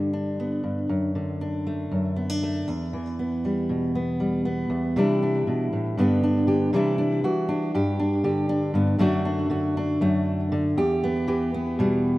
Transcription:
Already playing: G2 D3 G3 D4
0.13 D4
0.40 B3
0.64 G2
0.89 F#2
1.15 D3
1.41 D4
1.67 A3
1.91 F#2
2.16 B3
2.30 D4
2.43 A3
2.68 E2
2.93 E3
3.19 B3
3.45 G3
3.69 B2
3.95 B3
4.20 G3
4.45 B3
4.70 E2
4.96 C3 E3 G3 D4 E4
5.23 D4
5.47 B2
5.73 A2
5.97 G2 D3 B3 D4 G4
6.24 D4
6.47 D3 G4
6.73 C3 E3 G3 D4 E4
6.98 D4
7.24 E3 F#4
7.49 D4
7.74 G2 G4
8.00 D4
8.24 D3 G4
8.49 D4
8.74 G2 B3
8.98 F#2 D3 A3 D4 F#4
9.25 D4
9.50 D3 F#4
9.77 D4
10.01 F#2 A3
10.52 D3
10.77 E2 G4
11.04 B3
11.28 E3 G4
11.54 B3
11.79 B2 G3

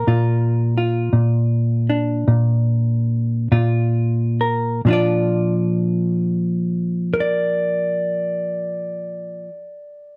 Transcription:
Already playing: F3 A#4
0.07 A#2 F4
0.78 F4
1.13 A#2
1.90 D4
2.28 A#2
3.52 A#2 F4
4.41 A#4
4.85 A#2 F3 D4
4.90 F4 D5
7.14 A#4
7.20 D5

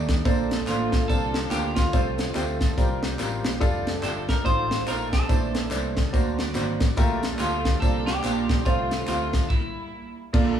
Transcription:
Already playing: D#2 D#3 A3 D4 G4 D5
0.09 kick, snare, closed hi-hat, tambourine
0.25 A#1 A#2 D3 A3 A#3 C4 D4 A4 C5, kick, closed hi-hat, tambourine
0.51 snare, closed hi-hat, tambourine
0.67 A1 A3 A#3 D4 F4 A4 C5, clap, closed hi-hat, tambourine
0.92 kick, snare, closed hi-hat, tambourine
1.08 C2 C3 D3 A#3 C4 D4 F4 A4 C5, kick, closed hi-hat, tambourine
1.34 snare, closed hi-hat, tambourine
1.50 D2 A#3 D4 F4 G4 A#4, clap, closed hi-hat, tambourine
1.75 A3 C4 F4, kick, snare, closed hi-hat, tambourine
1.93 C2 C3 F3 A3 C4 F4 G#4 C5, kick, closed hi-hat, tambourine
2.00 A4
2.18 snare, closed hi-hat, tambourine
2.35 D2 A3 C4 F4 G4, clap, closed hi-hat, tambourine
2.61 kick, snare, closed hi-hat, tambourine
2.77 C2 C3 F3 G3 A#3 C4 F4 G4 A#4, kick, closed hi-hat, tambourine
3.03 snare, closed hi-hat, tambourine
3.19 A1 G3 C4 F4 A#4 C5, clap, closed hi-hat, tambourine
3.44 A#1, snare, closed hi-hat, tambourine
3.60 F1 F3 G3 A3 D4 F4 G4 A4, kick, closed hi-hat, tambourine
3.87 snare, closed hi-hat, tambourine
4.03 G1 G3 D4 F4 G4 A4, clap, closed hi-hat, tambourine
4.29 A#4, kick, snare, closed hi-hat, tambourine
4.45 A1 A2 F3 A3 C4 D#4 F4 G#4 C5, kick, closed hi-hat, tambourine
4.52 A4
4.71 snare, closed hi-hat, tambourine
4.87 A#1 A3 D#4 F4 A#4 C5, clap, closed hi-hat, tambourine
5.12 C4 D4 A4, kick, snare, closed hi-hat, tambourine
5.29 A#1 A#2 E3 A3 C4 D4 E4 A4 C5, kick, closed hi-hat, tambourine
5.55 snare, closed hi-hat, tambourine
5.71 C2 A3 D4 E4 C5, clap, closed hi-hat, tambourine
5.97 kick, snare, closed hi-hat, tambourine
6.13 D2 D3 F#3 A#3 C4 D4 F#4 A#4 C5, kick, closed hi-hat, tambourine
6.38 F#4 D5, snare, closed hi-hat, tambourine
6.55 G#1 A#3 D4 F#4 A#4 C5 F#5, clap, closed hi-hat, tambourine
6.80 A1 F#4 D5, kick, snare, closed hi-hat, tambourine
6.97 A#1 A#2 G3 A3 F4 G4 A4 A#4, kick, closed hi-hat, tambourine
7.03 A3
7.23 snare, closed hi-hat, tambourine
7.39 D2 A3 D4 F4 G4 A4, clap, closed hi-hat, tambourine
7.65 kick, snare, closed hi-hat, tambourine
7.80 C2 C3 F3 A#3 C4 D4 F4 A4 A#4 C5, kick, closed hi-hat, tambourine
8.06 A#3 D4 G4, snare, closed hi-hat, tambourine
8.24 A#1 A#3 D4 F4 C5, clap, closed hi-hat, tambourine
8.49 B1, kick, snare, closed hi-hat, tambourine
8.65 C2 C3 F3 A3 C4 F4 A4 C5, kick, closed hi-hat, tambourine
8.91 snare, closed hi-hat, tambourine
9.07 D2 A3 C4 F4 G4, clap, closed hi-hat, tambourine
9.33 kick, snare, closed hi-hat, tambourine
9.49 G3 A#3 E4, kick, crash
10.33 A#1 A#2 F3 A3 A#3 D4 F4 A4 D5, kick, crash

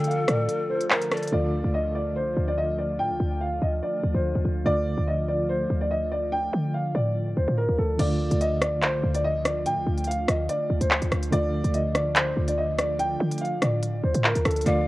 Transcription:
Already playing: D3 F3 A3 F4 A4 D5
0.04 F5, closed hi-hat
0.11 closed hi-hat
0.28 A2 D5, cross-stick, closed hi-hat
0.49 closed hi-hat
0.70 C5
0.81 closed hi-hat
0.91 A#4 C5, clap
1.02 closed hi-hat
1.12 A4 D5, cross-stick, closed hi-hat
1.17 closed hi-hat
1.23 closed hi-hat
1.28 D3, closed hi-hat
1.32 D2 D3 F3 A3 F4 D5
1.64 D2
1.74 D#5
1.95 D5
2.16 C2 C5
2.36 D2
2.48 D5
2.58 D#5
2.78 D5
2.99 A2 G5
3.10 D2
3.20 D2
3.41 F5
3.62 D2 D#5
3.82 D5
4.03 D2
4.14 D2 C5
4.35 D2
4.45 D2
4.64 D2 D3 A3 F4 D5
4.98 D2
5.08 D#5
5.28 D5
5.49 C5
5.70 D2
5.81 D5
5.91 D#5
6.12 D5
6.32 G5
6.53 D3
6.74 F5
6.95 A2 D5
7.37 D2 C5
7.48 A2
7.57 A#4
7.69 D2
7.78 D2 A4
7.97 D2 D3 F3 A3 F4 D5, closed hi-hat, crash
8.31 D2, closed hi-hat
8.41 D#5, closed hi-hat
8.62 D5, cross-stick, closed hi-hat
8.82 C2 C5, clap, closed hi-hat
9.03 D2
9.14 D5, closed hi-hat
9.24 D#5
9.45 D5, cross-stick, closed hi-hat
9.66 A2 G5, closed hi-hat
9.77 D2
9.87 D2
9.98 closed hi-hat
10.04 F5, closed hi-hat
10.11 closed hi-hat
10.28 D2 D#5, cross-stick, closed hi-hat
10.49 D5, closed hi-hat
10.70 D2
10.81 D2 C5, closed hi-hat
10.91 clap
11.02 D2, closed hi-hat
11.12 D2, cross-stick, closed hi-hat
11.23 closed hi-hat
11.31 D2 D3 A3 F4 D5, closed hi-hat
11.64 D2, closed hi-hat
11.74 D#5, closed hi-hat
11.95 D5, cross-stick, closed hi-hat
12.16 C5, clap, closed hi-hat
12.37 D2
12.48 D5, closed hi-hat
12.58 D#5
12.78 D5, cross-stick, closed hi-hat
12.99 G5, closed hi-hat
13.20 D3
13.31 closed hi-hat
13.38 F5, closed hi-hat
13.45 closed hi-hat
13.62 A2 D5, cross-stick, closed hi-hat
13.83 closed hi-hat
14.03 D2 C5
14.14 A2, closed hi-hat
14.24 A#4, clap
14.35 D2, closed hi-hat
14.45 D2 A4, cross-stick, closed hi-hat
14.51 closed hi-hat
14.56 closed hi-hat
14.61 D3, closed hi-hat
14.65 D2 A3 F4 D5 F5, closed hi-hat

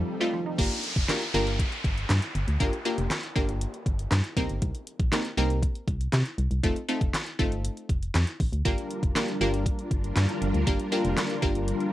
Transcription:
Already playing: F3 C4 D#4 A4, swell
0.20 A3 C4 D#4 F4
0.33 F3
0.46 D#4
0.58 G1 A#3 D4 F4 G4 A#4, kick, closed hi-hat, crash, downlifter
0.71 closed hi-hat
0.84 closed hi-hat
0.96 F1, kick, closed hi-hat
1.08 A#3 D4 F4 G4 A#4, snare, clap, closed hi-hat
1.21 closed hi-hat
1.34 G1 A#3 D4 F4 G4 A#4, closed hi-hat
1.47 closed hi-hat
1.59 kick, closed hi-hat
1.72 closed hi-hat
1.84 G1, kick, closed hi-hat
1.98 closed hi-hat
2.09 G2, snare, clap, closed hi-hat
2.22 closed hi-hat
2.35 G1, closed hi-hat
2.48 D2, closed hi-hat
2.60 G1 A#3 D4 F4 G4 A#4, kick, closed hi-hat
2.73 closed hi-hat
2.85 A#3 D4 F4 G4 A#4, closed hi-hat
2.98 F1, closed hi-hat
3.10 snare, clap, closed hi-hat
3.23 closed hi-hat
3.36 G1 A#3 D4 F4 G4 A#4, kick, closed hi-hat
3.49 closed hi-hat
3.61 closed hi-hat
3.74 closed hi-hat
3.86 G1, kick, closed hi-hat
3.99 closed hi-hat
4.11 G2, snare, clap, closed hi-hat
4.24 closed hi-hat
4.36 C2 A#3 C4 D#4 G4 A#4, kick, closed hi-hat
4.49 G1, closed hi-hat
4.62 C2, kick, closed hi-hat
4.75 closed hi-hat
4.87 closed hi-hat
4.99 A#1, kick, closed hi-hat
5.12 A#3 C4 D#4 G4 A#4, snare, clap, closed hi-hat
5.25 closed hi-hat
5.37 C2 A#3 C4 D#4 G4 A#4, closed hi-hat
5.50 closed hi-hat
5.63 kick, closed hi-hat
5.75 closed hi-hat
5.88 C2, kick, closed hi-hat
6.01 closed hi-hat
6.12 C3, snare, clap, closed hi-hat
6.25 closed hi-hat
6.38 C2, closed hi-hat
6.51 C2, closed hi-hat
6.63 F1 A3 C4 D#4 F4 A4, kick, closed hi-hat
6.76 closed hi-hat
6.88 A3 C4 D#4 F4 A4, closed hi-hat
7.01 F1, kick, closed hi-hat
7.14 snare, clap, closed hi-hat
7.27 closed hi-hat
7.39 G1 A3 C4 D#4 F4 A4, kick, closed hi-hat
7.52 closed hi-hat
7.65 closed hi-hat
7.77 closed hi-hat
7.89 F1, kick, closed hi-hat
8.03 closed hi-hat
8.14 F2, snare, clap, closed hi-hat
8.27 closed hi-hat
8.40 A1, kick, open hi-hat
8.53 D2, closed hi-hat
8.65 G1 G3 A#3 D4 F4 G4 A#4, kick, closed hi-hat
8.78 closed hi-hat
8.91 closed hi-hat
9.03 F1, kick, closed hi-hat
9.15 A#3 D4 F4 G4 A#4, snare, clap, closed hi-hat
9.28 closed hi-hat
9.41 G1 A#3 D4 F4 G4 A#4, closed hi-hat
9.54 closed hi-hat
9.66 kick, closed hi-hat
9.79 closed hi-hat
9.91 G1, kick, closed hi-hat
10.04 closed hi-hat
10.16 G2, snare, clap, closed hi-hat
10.29 closed hi-hat
10.42 G1, closed hi-hat
10.54 D2, closed hi-hat
10.67 G1 A#3 D4 F4 G4 A#4, kick, closed hi-hat
10.80 closed hi-hat
10.92 A#3 D4 F4 G4 A#4, closed hi-hat
11.05 F1, closed hi-hat
11.17 snare, clap, closed hi-hat
11.30 closed hi-hat
11.42 G1 A#3 D4 F4 G4 A#4, kick, closed hi-hat
11.55 closed hi-hat
11.68 closed hi-hat
11.80 closed hi-hat

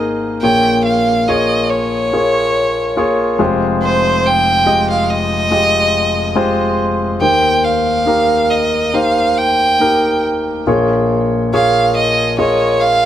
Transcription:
Already playing: G#1 G#2 A#3 D#4 G#4 A#4 C5
0.42 A#1 A#2 A#3 F4 G#4 C#5 G5
0.85 F5
1.28 A#3 F4 G#4 C#5 D#5
1.70 C#5
2.13 A#3 F4 G#4 C#5
2.96 A#3 F4 G#4 C#5
3.39 F1 F2 G#3 F4 G4 C5
3.83 C5
4.27 G5
4.66 G#3 F4 G4 D#5
4.90 F5
5.11 D#5
5.51 G#3 F4 G4 D#5
6.35 G#3 F4 G4 C5
7.21 D#2 D#3 A#3 D#4 G4 C5 G5
7.65 F5
8.06 A#3 D#4 G4 A#4
8.51 D#5
8.93 A#3 D#4 G4 C5 F5
9.38 G5
9.79 A#3 D#4 G4 A#4
10.67 A#1 A#2 A#3 F4 G#4 C#5
11.53 A#3 F4 G#4 C#5 F5
11.97 D#5
12.38 A#3 F4 G#4 C#5 D#5
12.81 F5

